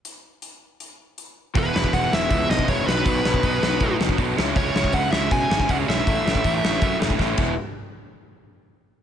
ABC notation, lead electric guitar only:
X:1
M:4/4
L:1/16
Q:1/4=160
K:E
V:1 name="Lead electric guitar"
z16 | B4 f2 e4 d2 c2 B2- | B8- B2 z6 | c4 f2 e2 g3 g f2 e2- |
e8- e2 z6 | z16 |]